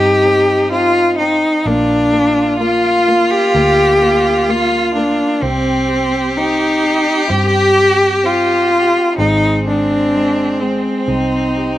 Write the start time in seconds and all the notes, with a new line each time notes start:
Already playing: G2 C4 D#4 G4
0.25 C4
0.71 C4 F4
1.18 C4 D#4
1.65 A#1 A#3 D4 F4
2.12 A#3
2.60 A#3 F4
3.08 A#3
3.31 G4
3.55 D2 A#3
4.02 A#3
4.49 A#3 F4
4.95 A#3 D4
5.41 C2 C4 G4
5.88 G4
6.37 C4 D#4
6.83 G4
7.29 G2 C4 G4
7.77 G4
8.23 C4 F4
8.71 G4
9.17 G#1 G#3 C4 D#4
9.66 G#3 D4
10.15 G#3
10.60 G#3 C4
11.08 C2 C4 D#4
11.57 G4